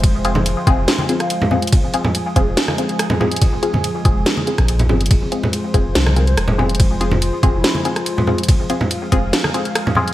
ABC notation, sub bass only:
X:1
M:4/4
L:1/16
Q:1/4=142
K:Fm
V:1 name="Sub bass" clef=bass
F,,,4- F,,, z F,,,2 z8 | z6 F,,,2 z8 | z6 F,,,2 z3 B,,,3 G,,,2 | F,,, z4 z F,,,2 C,,4 F,,,4- |
F,,,4- F,,, z F,,,2 z8 | z6 F,,,2 z8 |]